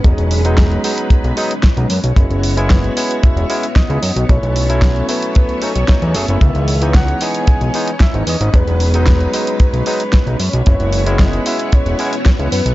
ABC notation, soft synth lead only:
X:1
M:4/4
L:1/8
Q:1/4=113
K:F#dor
V:1 name="Soft synth lead"
G6 z2 | z2 B2 e2 d2 | c3 B B c2 e- | e2 f g3 e d |
B4- B B2 c- | c2 d e c2 z B |]